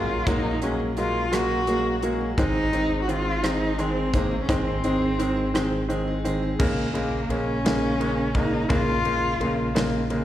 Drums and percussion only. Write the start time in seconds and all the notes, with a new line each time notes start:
0.27 kick, closed hi-hat
0.62 closed hi-hat
0.97 closed hi-hat
1.33 cross-stick, closed hi-hat
1.67 closed hi-hat
2.03 closed hi-hat
2.38 kick, closed hi-hat
2.73 closed hi-hat
3.09 closed hi-hat
3.44 cross-stick, closed hi-hat
3.79 closed hi-hat
4.14 kick, closed hi-hat
4.49 kick, closed hi-hat
4.84 closed hi-hat
5.20 closed hi-hat
5.55 cross-stick, closed hi-hat
5.90 closed hi-hat
6.25 closed hi-hat
6.60 kick, crash
6.95 ride
7.30 ride
7.66 snare, ride
8.01 ride
8.35 kick, ride
8.70 kick, ride
9.05 ride
9.41 ride
9.76 snare, ride
10.10 ride